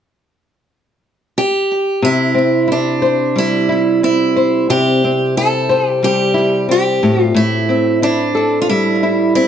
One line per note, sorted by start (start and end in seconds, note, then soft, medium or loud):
1.38 2.05 G4 medium
2.02 4.69 C3 medium
2.02 2.71 E4 medium
2.34 4.03 C4 soft
2.68 3.69 E4 medium
2.72 3.38 D4 medium
3.02 4.36 C5 medium
3.36 6.02 G3 medium
3.36 3.99 E4 medium
3.69 5.37 E4 soft
4.03 5.04 C4 soft
4.03 4.66 E4 medium
4.36 5.69 C5 medium
4.70 7.02 C3 medium
4.70 5.37 G4 medium
5.04 6.68 C4 soft
5.37 6.34 E4 soft
5.37 5.88 A4 medium
5.69 8.34 C5 medium
5.88 6.04 G4 medium
6.03 7.38 G3 medium
6.03 6.66 G4 medium
6.34 8.02 E4 soft
6.69 7.68 C4 medium
6.69 7.22 G4 medium
7.03 7.33 A2 medium
7.22 7.39 F4 medium
7.34 9.48 A2 medium
7.34 7.99 E4 medium
7.69 9.34 C4 soft
8.02 8.61 D4 medium
8.02 9.02 E4 medium
8.35 9.48 A4 medium
8.62 8.69 F4 medium
8.69 9.48 G3 medium
8.69 9.32 E4 medium
9.03 9.48 E4 medium
9.35 9.48 C4 soft
9.35 9.48 E4 medium